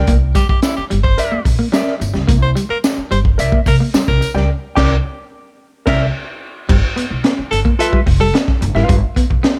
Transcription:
Already playing: A#4 D5 G5
0.07 C2 A#3, kick, closed hi-hat
0.35 G3 G4, kick, closed hi-hat, tambourine
0.49 G4, muted clean electric guitar stroke, muted upright bass stroke, kick
0.62 E4, snare, closed hi-hat, tambourine
0.76 G4, muted upright bass stroke
0.90 G1 G3, closed hi-hat
1.03 C5, kick
1.18 A#4 D5 E5, closed hi-hat, tambourine
1.32 A#3, muted upright bass stroke
1.45 A#1, muted clean electric guitar stroke, kick, open hi-hat, tambourine
1.59 A#3
1.72 G3 A#4 D5 E5, snare, closed hi-hat, tambourine
1.87 snare
2.00 G1, muted clean electric guitar stroke, closed hi-hat, tambourine
2.14 C#2 G3, snare
2.27 C2 A#3, kick, closed hi-hat, tambourine
2.42 C5
2.55 G3, closed hi-hat, tambourine
2.69 A#4, muted clean electric guitar stroke, muted upright bass stroke
2.84 snare, closed hi-hat, tambourine
2.98 muted upright bass stroke
3.11 G1 G3 C5, closed hi-hat, tambourine
3.25 kick
3.38 C2 A#4 D5 E5, closed hi-hat, tambourine
3.52 A#3, kick
3.66 C3 A#4, muted clean electric guitar stroke, kick, open hi-hat, tambourine
3.80 A#3
3.94 G3, muted upright bass stroke, snare, closed hi-hat, tambourine
4.08 C2 A#4, kick, snare
4.21 muted clean electric guitar stroke, closed hi-hat, tambourine
4.34 C#2 G3 A#4 D5 G5, snare
4.75 C2 G4 A#4 D5 G5, kick, snare, crash
5.86 C2 A#4 D5 E5, kick, snare, crash
6.69 G1 G3, kick, crash
6.96 B3, closed hi-hat
7.10 B1, muted clean electric guitar stroke
7.24 B3, snare, closed hi-hat
7.39 muted upright bass stroke
7.51 G1 A4, muted clean electric guitar stroke, closed hi-hat
7.65 A#3, kick
7.79 F4 A4 B4 E5, closed hi-hat
7.92 G3, kick
8.06 F1, muted clean electric guitar stroke, kick, open hi-hat
8.20 G3 A4
8.34 B3, snare, closed hi-hat
8.48 kick, snare
8.61 G1, muted clean electric guitar stroke, closed hi-hat
8.75 G#1 G3 F4 B4 F5, snare
8.89 G1 G3, kick, closed hi-hat
9.16 B3, kick, closed hi-hat
9.30 B1, muted clean electric guitar stroke, kick
9.43 B3, snare, closed hi-hat

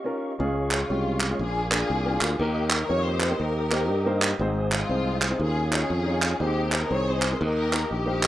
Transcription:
Already playing: A#3 C#4 G4 D#5 F5 C#6
0.04 C#4 D#4 F4 A#4
0.39 C#2 C#3 G#3 C#4 F4 G#4 C#5 F5 C#6
0.70 G#3 C#4 F4, clap
0.89 C2 G#3 C#4 F4 G4
1.20 clap
1.30 G#3 C#4 F4 G#4
1.39 A#1 A#2 D4 F4 G#4 A#4 G#5 D6
1.71 A#3 D4 F4 G#4, clap
1.90 C2
2.05 A#3 D4 F4 A#4
2.21 D2, clap
2.39 D#2 D#3 A#3 D#4 G4 A#4 D#5 G5 D#6
2.70 A#4, clap
2.89 F2 A#3 D#4 G4 A#4 C#5
3.04 D#4 G4 C5
3.20 clap
3.31 A#3 D#4 G4 C5
3.40 D#2 D#4 G4 A#4
3.71 A#3 D#4 G4 C5, clap
3.90 G2
4.06 A#3 D#4 G4 C5
4.22 clap
4.39 G#1 G#2 C4 D#4 G#4 C5 G#5
4.72 G#3 C4 F4, clap
4.89 C2 C4 D#4 G#4 C5
5.22 clap
5.31 C4 D#4 G#4 C5
5.39 D#2 D#3 C#4 F4 G#4 C#5 F5 G#5
5.71 C#4 D#4 F4 G#4 C#5, clap
5.90 F2
6.06 D#4 F4 G#4 C#5
6.22 clap
6.40 D#2 D#3 C4 D#4 G4 G#4 C5 D#5
6.72 A#4, clap
6.91 C2 C4 D#4 G#4 C5 C#5
7.08 D#4 G#4 C5
7.22 clap
7.32 C4 D#4 G#4 A#4
7.41 D#2 D#3 D#4 G4 A#4 D#5 G5
7.72 A#3 D#4 G4 A#4, clap
7.91 A#1 A#3 D#4 G4
8.06 A#3 D#4 G4 C5
8.23 clap

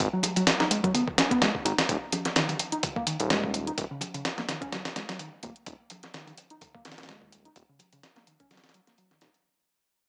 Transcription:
0.00 G#1, kick, closed hi-hat
0.13 F#3
0.23 closed hi-hat, high conga
0.36 F#3, closed hi-hat
0.47 snare, closed hi-hat
0.60 D#4, snare, high conga
0.71 G#3, closed hi-hat
0.84 F#3, kick, closed hi-hat
0.94 B3, closed hi-hat, low conga
1.08 kick
1.18 C#4, snare, closed hi-hat
1.31 B3, kick, closed hi-hat
1.41 G#3, snare, closed hi-hat
1.55 kick
1.65 G#1 D#4, closed hi-hat
1.78 snare, closed hi-hat
1.89 D#1, kick, closed hi-hat
2.12 closed hi-hat, high conga
2.25 snare, closed hi-hat
2.36 D#3, snare, closed hi-hat
2.49 D#3, closed hi-hat, high conga
2.59 closed hi-hat
2.72 D#4, closed hi-hat
2.83 kick, closed hi-hat, low conga
2.96 A#3, kick
3.07 D#3, closed hi-hat
3.20 D#1, closed hi-hat
3.30 G#3, snare, closed hi-hat
3.44 kick
3.54 closed hi-hat
3.67 D#4, closed hi-hat
3.78 D#1, kick, closed hi-hat
3.91 C#3
4.01 closed hi-hat, high conga
4.14 C#3, closed hi-hat
4.25 snare, closed hi-hat
4.38 A#3, snare, high conga
4.49 D#3, snare, closed hi-hat
4.61 C#4, kick, closed hi-hat
4.72 F#3, snare, closed hi-hat, low conga
4.85 snare, closed hi-hat
4.96 G#3, snare, closed hi-hat
5.09 F#3, snare, closed hi-hat
5.19 D#3, closed hi-hat
5.43 D#1 A#3, kick, closed hi-hat
5.56 closed hi-hat
5.66 D#1, kick, closed hi-hat
5.90 closed hi-hat, high conga
6.03 snare, closed hi-hat
6.14 D#3, snare, closed hi-hat
6.27 D#3, closed hi-hat, high conga
6.37 closed hi-hat
6.50 D#4, closed hi-hat
6.61 kick, closed hi-hat, low conga
6.74 A#3, kick
6.85 D#3, snare, closed hi-hat
6.92 snare, closed hi-hat
6.98 D#1, snare, closed hi-hat
7.03 snare, closed hi-hat
7.09 G#3, snare, closed hi-hat
7.22 kick
7.32 closed hi-hat
7.45 D#4, closed hi-hat
7.56 D#1, kick, closed hi-hat
7.69 C#3
7.79 closed hi-hat, high conga
7.93 C#3, closed hi-hat
8.03 snare, closed hi-hat
8.16 A#3, snare, high conga
8.27 D#3, closed hi-hat
8.40 C#4, kick, closed hi-hat
8.51 F#3, snare, closed hi-hat, low conga
8.57 snare, closed hi-hat
8.64 snare, closed hi-hat
8.69 snare, closed hi-hat
8.74 F#3, closed hi-hat
8.87 A#3, snare, closed hi-hat
8.98 F#3, closed hi-hat
9.11 D#3, snare
9.21 D#1 D#4, snare, closed hi-hat
9.34 closed hi-hat

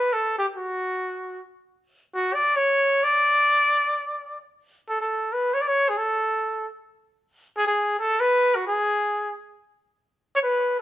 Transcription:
Already playing: B4
0.13 A4
0.38 G4
0.56 F#4
2.14 F#4
2.34 D5
2.56 C#5
3.04 D5
4.89 A4
5.01 A4
5.33 B4
5.54 C#5
5.61 D5
5.68 C#5
5.89 G#4
5.98 A4
7.58 G#4
7.67 G#4
7.99 A4
8.20 B4
8.55 F#4
8.67 G#4
10.35 C#5
10.44 B4

